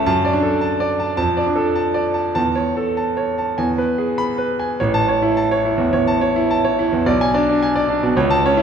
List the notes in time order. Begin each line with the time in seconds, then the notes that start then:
0.06 F#2 A5
0.25 D5
0.33 D4
0.43 A4
0.61 A5
0.80 D5
1.00 A5
1.17 F2 A5
1.37 D5
1.46 D4
1.56 A4
1.75 A5
1.94 D5
2.14 A5
2.35 E2 A5
2.55 C#5
2.77 A4
2.97 A5
3.17 C#5
3.38 A5
3.58 E2 G#5
3.78 B4
3.98 G#4
4.18 B5
4.38 B4
4.59 G#5
4.80 A1 C#5
4.94 A5
5.08 C#5
5.22 E4
5.37 A5
5.51 C#5
5.65 E4
5.78 E2
5.93 E2 C#5
6.07 A5
6.21 C#5
6.36 E4
6.51 A5
6.65 C#5
6.79 E4
6.92 E2
7.06 B1 D5
7.21 G#5
7.34 D4 D5
7.49 D4
7.63 G#5
7.76 D5
7.89 D4
8.03 B2
8.17 C#2 C#5
8.30 A5
8.45 C#4 C#5
8.57 E4